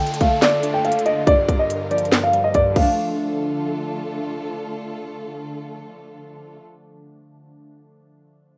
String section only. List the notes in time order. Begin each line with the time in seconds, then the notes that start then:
Already playing: D3 A3 F4 A4
1.27 G3 A#4
2.76 D3 A3 F4 A4